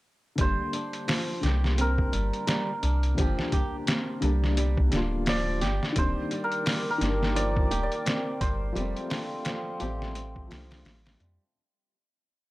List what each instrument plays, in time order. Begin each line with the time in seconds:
0.35 sub bass G1, felt piano D3 G3, nylon-string guitar G3, kick, closed hi-hat
0.40 felt piano A#3 D4, santur C5
0.73 nylon-string guitar D4, closed hi-hat
0.93 closed hi-hat
1.08 nylon-string guitar F3, snare, open hi-hat
1.41 sub bass C2, felt piano D3 G3, nylon-string guitar G4, snare, closed hi-hat
1.45 felt piano A#3 D4
1.64 snare
1.78 nylon-string guitar C4, santur A#4, closed hi-hat
1.98 kick
2.12 sub bass G1, nylon-string guitar G3, closed hi-hat
2.33 closed hi-hat
2.47 nylon-string guitar G3, snare, closed hi-hat
2.83 sub bass C2, nylon-string guitar D4, closed hi-hat
3.03 closed hi-hat
3.15 sub bass G1, felt piano D3 G3, nylon-string guitar F3, kick, closed hi-hat
3.19 felt piano A#3 D4, santur G4
3.39 snare
3.52 nylon-string guitar G4, kick, closed hi-hat
3.87 nylon-string guitar C4, snare, closed hi-hat
4.21 sub bass C2, felt piano D3 G3 A#3 D4, nylon-string guitar G3, closed hi-hat
4.44 snare
4.57 nylon-string guitar G3, closed hi-hat
4.77 kick
4.89 felt piano D3 G3, nylon-string guitar D4, snare, closed hi-hat
4.93 sub bass D1, felt piano A#3 F4
5.26 nylon-string guitar F3, santur D5, snare, open hi-hat
5.61 sub bass G1, nylon-string guitar G4, snare, closed hi-hat
5.83 snare
5.93 felt piano D#3 G3, kick, closed hi-hat
5.97 sub bass D#1, felt piano A#3 D4, nylon-string guitar C4, analog synth pad A#4 G5 D6, santur C5
6.31 nylon-string guitar G3, closed hi-hat
6.44 santur A#4
6.52 closed hi-hat
6.66 nylon-string guitar G3, snare, open hi-hat
6.90 santur A#4
6.98 sub bass G1, felt piano D#3 G3, nylon-string guitar D4, closed hi-hat
7.03 felt piano A#3 D4, snare
7.23 snare
7.36 nylon-string guitar F3, santur D5, closed hi-hat
7.57 kick
7.71 sub bass D#1, nylon-string guitar G4, closed hi-hat
7.83 santur D5
7.92 closed hi-hat
8.06 nylon-string guitar C4, snare, closed hi-hat
8.41 sub bass G1, nylon-string guitar G3, santur C5, kick, closed hi-hat
8.73 sub bass F1, felt piano F3 G3, nylon-string guitar G3, analog synth pad A4 F5 G5 C6, closed hi-hat
8.77 felt piano A3 C4
8.97 closed hi-hat
9.10 nylon-string guitar D4, snare, open hi-hat
9.45 nylon-string guitar F3, snare, closed hi-hat
9.80 sub bass A1, felt piano F3 G3 A3 C4, nylon-string guitar G4, closed hi-hat
10.02 snare
10.15 nylon-string guitar C4, closed hi-hat
10.36 kick
10.48 sub bass C2, felt piano F3 G3, nylon-string guitar F3, open hi-hat
10.52 felt piano A3 D4, snare
10.71 snare, open hi-hat
10.85 sub bass A1, nylon-string guitar G3, snare, open hi-hat
11.06 snare, open hi-hat
11.20 sub bass F2, nylon-string guitar G3, closed hi-hat